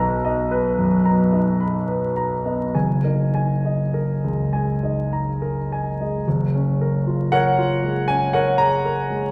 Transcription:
0, 0, Header, 1, 2, 480
1, 0, Start_track
1, 0, Key_signature, 6, "major"
1, 0, Tempo, 1067616
1, 722, Tempo, 1134216
1, 1202, Time_signature, 3, 2, 24, 8
1, 1202, Tempo, 1171875
1, 2642, Tempo, 1058201
1, 3122, Tempo, 1010101
1, 4073, End_track
2, 0, Start_track
2, 0, Title_t, "Grand piano"
2, 0, Program_c, 0, 0
2, 0, Control_c, 0, 64, 127
2, 0, Note_on_c, 0, 35, 63
2, 0, Note_on_c, 0, 63, 47
2, 0, Note_on_c, 0, 71, 45
2, 0, Note_on_c, 0, 82, 54
2, 69, Note_off_c, 0, 63, 0
2, 70, Note_off_c, 0, 71, 0
2, 110, Note_on_c, 0, 75, 50
2, 184, Note_off_c, 0, 82, 0
2, 231, Note_on_c, 0, 71, 55
2, 304, Note_off_c, 0, 75, 0
2, 351, Note_on_c, 0, 42, 46
2, 425, Note_off_c, 0, 71, 0
2, 474, Note_on_c, 0, 82, 48
2, 475, Note_on_c, 0, 59, 45
2, 547, Note_off_c, 0, 42, 0
2, 595, Note_on_c, 0, 63, 41
2, 596, Note_on_c, 0, 75, 45
2, 671, Note_off_c, 0, 59, 0
2, 671, Note_off_c, 0, 82, 0
2, 721, Note_on_c, 0, 83, 46
2, 791, Note_off_c, 0, 63, 0
2, 791, Note_off_c, 0, 75, 0
2, 839, Note_on_c, 0, 71, 39
2, 910, Note_off_c, 0, 83, 0
2, 959, Note_on_c, 0, 82, 45
2, 1030, Note_off_c, 0, 71, 0
2, 1080, Note_on_c, 0, 59, 39
2, 1081, Note_on_c, 0, 75, 41
2, 1152, Note_off_c, 0, 82, 0
2, 1182, Note_off_c, 0, 35, 0
2, 1202, Note_off_c, 0, 59, 0
2, 1203, Note_off_c, 0, 75, 0
2, 1205, Note_on_c, 0, 30, 47
2, 1205, Note_on_c, 0, 80, 44
2, 1208, Control_c, 0, 64, 0
2, 1304, Control_c, 0, 64, 127
2, 1326, Note_on_c, 0, 70, 37
2, 1327, Note_on_c, 0, 63, 37
2, 1397, Note_off_c, 0, 80, 0
2, 1449, Note_on_c, 0, 80, 44
2, 1519, Note_off_c, 0, 70, 0
2, 1520, Note_off_c, 0, 63, 0
2, 1576, Note_on_c, 0, 75, 36
2, 1643, Note_off_c, 0, 80, 0
2, 1693, Note_on_c, 0, 70, 42
2, 1767, Note_off_c, 0, 75, 0
2, 1817, Note_on_c, 0, 37, 37
2, 1886, Note_off_c, 0, 70, 0
2, 1934, Note_on_c, 0, 56, 38
2, 1935, Note_on_c, 0, 80, 44
2, 2008, Note_off_c, 0, 37, 0
2, 2059, Note_on_c, 0, 63, 34
2, 2059, Note_on_c, 0, 75, 38
2, 2124, Note_off_c, 0, 56, 0
2, 2125, Note_off_c, 0, 80, 0
2, 2180, Note_on_c, 0, 82, 39
2, 2245, Note_off_c, 0, 63, 0
2, 2245, Note_off_c, 0, 75, 0
2, 2299, Note_on_c, 0, 70, 37
2, 2366, Note_off_c, 0, 82, 0
2, 2424, Note_on_c, 0, 80, 42
2, 2487, Note_off_c, 0, 70, 0
2, 2538, Note_on_c, 0, 56, 34
2, 2540, Note_on_c, 0, 75, 38
2, 2604, Note_off_c, 0, 80, 0
2, 2627, Note_off_c, 0, 30, 0
2, 2647, Note_off_c, 0, 56, 0
2, 2648, Note_off_c, 0, 75, 0
2, 2650, Control_c, 0, 64, 0
2, 2652, Note_on_c, 0, 30, 49
2, 2725, Control_c, 0, 64, 127
2, 2775, Note_on_c, 0, 61, 39
2, 2895, Note_on_c, 0, 70, 43
2, 2962, Note_off_c, 0, 61, 0
2, 3011, Note_on_c, 0, 65, 37
2, 3080, Note_off_c, 0, 70, 0
2, 3124, Note_on_c, 0, 78, 88
2, 3128, Note_on_c, 0, 70, 64
2, 3130, Note_on_c, 0, 73, 61
2, 3199, Note_off_c, 0, 65, 0
2, 3251, Note_on_c, 0, 65, 42
2, 3369, Note_on_c, 0, 56, 39
2, 3442, Note_off_c, 0, 65, 0
2, 3472, Note_off_c, 0, 70, 0
2, 3473, Note_off_c, 0, 73, 0
2, 3485, Note_on_c, 0, 80, 80
2, 3489, Note_off_c, 0, 78, 0
2, 3492, Note_on_c, 0, 61, 39
2, 3561, Note_off_c, 0, 56, 0
2, 3606, Note_on_c, 0, 78, 76
2, 3607, Note_off_c, 0, 80, 0
2, 3611, Note_on_c, 0, 70, 62
2, 3611, Note_on_c, 0, 73, 60
2, 3682, Note_off_c, 0, 61, 0
2, 3721, Note_off_c, 0, 70, 0
2, 3721, Note_off_c, 0, 73, 0
2, 3724, Note_on_c, 0, 82, 84
2, 3727, Note_off_c, 0, 78, 0
2, 3731, Note_on_c, 0, 68, 37
2, 3848, Note_off_c, 0, 68, 0
2, 3853, Note_on_c, 0, 70, 42
2, 3970, Note_on_c, 0, 56, 40
2, 4038, Note_off_c, 0, 70, 0
2, 4068, Note_off_c, 0, 30, 0
2, 4073, Note_off_c, 0, 56, 0
2, 4073, Note_off_c, 0, 82, 0
2, 4073, End_track
0, 0, End_of_file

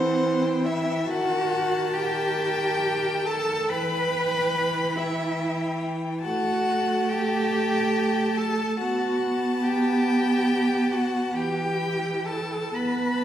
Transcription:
0, 0, Header, 1, 5, 480
1, 0, Start_track
1, 0, Key_signature, 1, "minor"
1, 0, Tempo, 868307
1, 593, Time_signature, 6, 3, 24, 8
1, 2037, Tempo, 851064
1, 6357, Tempo, 910470
1, 6837, Tempo, 978793
1, 7322, End_track
2, 0, Start_track
2, 0, Title_t, "Violin"
2, 0, Program_c, 0, 40
2, 0, Note_on_c, 0, 72, 87
2, 361, Note_on_c, 0, 76, 81
2, 369, Note_off_c, 0, 72, 0
2, 608, Note_on_c, 0, 78, 87
2, 616, Note_off_c, 0, 76, 0
2, 1075, Note_off_c, 0, 78, 0
2, 1079, Note_on_c, 0, 79, 91
2, 1805, Note_on_c, 0, 81, 88
2, 1813, Note_off_c, 0, 79, 0
2, 2038, Note_off_c, 0, 81, 0
2, 2049, Note_on_c, 0, 83, 92
2, 2765, Note_on_c, 0, 76, 76
2, 2774, Note_off_c, 0, 83, 0
2, 3240, Note_off_c, 0, 76, 0
2, 3483, Note_on_c, 0, 78, 84
2, 3954, Note_on_c, 0, 79, 87
2, 3963, Note_off_c, 0, 78, 0
2, 4677, Note_on_c, 0, 81, 81
2, 4685, Note_off_c, 0, 79, 0
2, 4918, Note_off_c, 0, 81, 0
2, 4920, Note_on_c, 0, 78, 80
2, 5394, Note_on_c, 0, 79, 84
2, 5402, Note_off_c, 0, 78, 0
2, 6121, Note_on_c, 0, 78, 72
2, 6129, Note_off_c, 0, 79, 0
2, 6363, Note_on_c, 0, 79, 76
2, 6371, Note_off_c, 0, 78, 0
2, 6838, Note_off_c, 0, 79, 0
2, 6841, Note_on_c, 0, 81, 71
2, 7080, Note_on_c, 0, 83, 69
2, 7088, Note_off_c, 0, 81, 0
2, 7322, Note_off_c, 0, 83, 0
2, 7322, End_track
3, 0, Start_track
3, 0, Title_t, "Violin"
3, 0, Program_c, 1, 40
3, 0, Note_on_c, 1, 78, 72
3, 235, Note_on_c, 1, 79, 66
3, 243, Note_off_c, 1, 78, 0
3, 590, Note_off_c, 1, 79, 0
3, 593, Note_on_c, 1, 81, 83
3, 2015, Note_off_c, 1, 81, 0
3, 2035, Note_on_c, 1, 79, 70
3, 2737, Note_off_c, 1, 79, 0
3, 2751, Note_on_c, 1, 79, 75
3, 3458, Note_off_c, 1, 79, 0
3, 3470, Note_on_c, 1, 81, 77
3, 4892, Note_off_c, 1, 81, 0
3, 4915, Note_on_c, 1, 81, 78
3, 6357, Note_on_c, 1, 79, 67
3, 6365, Note_off_c, 1, 81, 0
3, 7070, Note_off_c, 1, 79, 0
3, 7073, Note_on_c, 1, 81, 54
3, 7322, Note_off_c, 1, 81, 0
3, 7322, End_track
4, 0, Start_track
4, 0, Title_t, "Cello"
4, 0, Program_c, 2, 42
4, 0, Note_on_c, 2, 60, 90
4, 358, Note_on_c, 2, 64, 88
4, 367, Note_off_c, 2, 60, 0
4, 591, Note_off_c, 2, 64, 0
4, 595, Note_on_c, 2, 66, 100
4, 1072, Note_on_c, 2, 67, 92
4, 1080, Note_off_c, 2, 66, 0
4, 1802, Note_off_c, 2, 67, 0
4, 1806, Note_on_c, 2, 69, 97
4, 2043, Note_on_c, 2, 71, 103
4, 2052, Note_off_c, 2, 69, 0
4, 2758, Note_on_c, 2, 64, 88
4, 2766, Note_off_c, 2, 71, 0
4, 3236, Note_off_c, 2, 64, 0
4, 3471, Note_on_c, 2, 66, 89
4, 3955, Note_on_c, 2, 67, 91
4, 3964, Note_off_c, 2, 66, 0
4, 4681, Note_on_c, 2, 69, 84
4, 4689, Note_off_c, 2, 67, 0
4, 4920, Note_off_c, 2, 69, 0
4, 4925, Note_on_c, 2, 66, 89
4, 5385, Note_off_c, 2, 66, 0
4, 5393, Note_on_c, 2, 67, 85
4, 6117, Note_on_c, 2, 66, 79
4, 6125, Note_off_c, 2, 67, 0
4, 6354, Note_off_c, 2, 66, 0
4, 6357, Note_on_c, 2, 67, 81
4, 6838, Note_on_c, 2, 69, 75
4, 6845, Note_off_c, 2, 67, 0
4, 7076, Note_on_c, 2, 71, 80
4, 7083, Note_off_c, 2, 69, 0
4, 7322, Note_off_c, 2, 71, 0
4, 7322, End_track
5, 0, Start_track
5, 0, Title_t, "Viola"
5, 0, Program_c, 3, 41
5, 0, Note_on_c, 3, 52, 83
5, 592, Note_on_c, 3, 51, 77
5, 600, Note_off_c, 3, 52, 0
5, 2037, Note_off_c, 3, 51, 0
5, 2045, Note_on_c, 3, 52, 76
5, 3478, Note_on_c, 3, 57, 77
5, 3487, Note_off_c, 3, 52, 0
5, 4923, Note_on_c, 3, 59, 75
5, 4932, Note_off_c, 3, 57, 0
5, 6360, Note_off_c, 3, 59, 0
5, 6366, Note_on_c, 3, 52, 66
5, 7062, Note_off_c, 3, 52, 0
5, 7079, Note_on_c, 3, 59, 58
5, 7322, Note_off_c, 3, 59, 0
5, 7322, End_track
0, 0, End_of_file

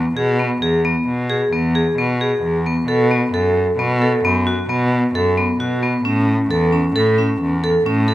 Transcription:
0, 0, Header, 1, 3, 480
1, 0, Start_track
1, 0, Tempo, 452830
1, 3054, Time_signature, 7, 2, 24, 8
1, 8632, End_track
2, 0, Start_track
2, 0, Title_t, "Vibraphone"
2, 0, Program_c, 0, 11
2, 177, Note_on_c, 0, 68, 77
2, 364, Note_off_c, 0, 68, 0
2, 417, Note_on_c, 0, 59, 70
2, 604, Note_off_c, 0, 59, 0
2, 660, Note_on_c, 0, 68, 83
2, 846, Note_off_c, 0, 68, 0
2, 899, Note_on_c, 0, 59, 76
2, 1273, Note_off_c, 0, 59, 0
2, 1373, Note_on_c, 0, 68, 78
2, 1562, Note_off_c, 0, 68, 0
2, 1617, Note_on_c, 0, 59, 81
2, 1804, Note_off_c, 0, 59, 0
2, 1858, Note_on_c, 0, 68, 76
2, 2045, Note_off_c, 0, 68, 0
2, 2101, Note_on_c, 0, 59, 73
2, 2287, Note_off_c, 0, 59, 0
2, 2342, Note_on_c, 0, 68, 75
2, 2715, Note_off_c, 0, 68, 0
2, 2823, Note_on_c, 0, 59, 73
2, 3007, Note_off_c, 0, 59, 0
2, 3054, Note_on_c, 0, 69, 84
2, 3242, Note_off_c, 0, 69, 0
2, 3298, Note_on_c, 0, 59, 71
2, 3484, Note_off_c, 0, 59, 0
2, 3539, Note_on_c, 0, 69, 81
2, 3913, Note_off_c, 0, 69, 0
2, 4019, Note_on_c, 0, 59, 77
2, 4205, Note_off_c, 0, 59, 0
2, 4259, Note_on_c, 0, 69, 74
2, 4445, Note_off_c, 0, 69, 0
2, 4503, Note_on_c, 0, 59, 79
2, 4687, Note_off_c, 0, 59, 0
2, 4736, Note_on_c, 0, 66, 79
2, 4923, Note_off_c, 0, 66, 0
2, 4973, Note_on_c, 0, 59, 80
2, 5349, Note_off_c, 0, 59, 0
2, 5461, Note_on_c, 0, 69, 81
2, 5646, Note_off_c, 0, 69, 0
2, 5699, Note_on_c, 0, 59, 80
2, 5884, Note_off_c, 0, 59, 0
2, 5938, Note_on_c, 0, 66, 75
2, 6124, Note_off_c, 0, 66, 0
2, 6177, Note_on_c, 0, 59, 71
2, 6363, Note_off_c, 0, 59, 0
2, 6413, Note_on_c, 0, 61, 87
2, 6789, Note_off_c, 0, 61, 0
2, 6896, Note_on_c, 0, 69, 82
2, 7082, Note_off_c, 0, 69, 0
2, 7130, Note_on_c, 0, 61, 74
2, 7319, Note_off_c, 0, 61, 0
2, 7375, Note_on_c, 0, 69, 89
2, 7561, Note_off_c, 0, 69, 0
2, 7613, Note_on_c, 0, 61, 73
2, 7989, Note_off_c, 0, 61, 0
2, 8096, Note_on_c, 0, 69, 85
2, 8282, Note_off_c, 0, 69, 0
2, 8335, Note_on_c, 0, 61, 80
2, 8521, Note_off_c, 0, 61, 0
2, 8565, Note_on_c, 0, 69, 78
2, 8632, Note_off_c, 0, 69, 0
2, 8632, End_track
3, 0, Start_track
3, 0, Title_t, "Cello"
3, 0, Program_c, 1, 42
3, 0, Note_on_c, 1, 40, 102
3, 134, Note_off_c, 1, 40, 0
3, 177, Note_on_c, 1, 47, 96
3, 614, Note_off_c, 1, 47, 0
3, 660, Note_on_c, 1, 40, 92
3, 1096, Note_off_c, 1, 40, 0
3, 1144, Note_on_c, 1, 47, 86
3, 1577, Note_off_c, 1, 47, 0
3, 1621, Note_on_c, 1, 40, 101
3, 2056, Note_off_c, 1, 40, 0
3, 2095, Note_on_c, 1, 47, 87
3, 2533, Note_off_c, 1, 47, 0
3, 2574, Note_on_c, 1, 40, 96
3, 3012, Note_off_c, 1, 40, 0
3, 3052, Note_on_c, 1, 47, 99
3, 3490, Note_off_c, 1, 47, 0
3, 3530, Note_on_c, 1, 42, 101
3, 3969, Note_off_c, 1, 42, 0
3, 4012, Note_on_c, 1, 47, 100
3, 4450, Note_off_c, 1, 47, 0
3, 4497, Note_on_c, 1, 42, 87
3, 4933, Note_off_c, 1, 42, 0
3, 4978, Note_on_c, 1, 47, 100
3, 5414, Note_off_c, 1, 47, 0
3, 5457, Note_on_c, 1, 42, 93
3, 5893, Note_off_c, 1, 42, 0
3, 5936, Note_on_c, 1, 47, 88
3, 6372, Note_off_c, 1, 47, 0
3, 6410, Note_on_c, 1, 45, 101
3, 6849, Note_off_c, 1, 45, 0
3, 6896, Note_on_c, 1, 40, 108
3, 7332, Note_off_c, 1, 40, 0
3, 7373, Note_on_c, 1, 45, 98
3, 7810, Note_off_c, 1, 45, 0
3, 7862, Note_on_c, 1, 40, 93
3, 8295, Note_off_c, 1, 40, 0
3, 8334, Note_on_c, 1, 45, 106
3, 8632, Note_off_c, 1, 45, 0
3, 8632, End_track
0, 0, End_of_file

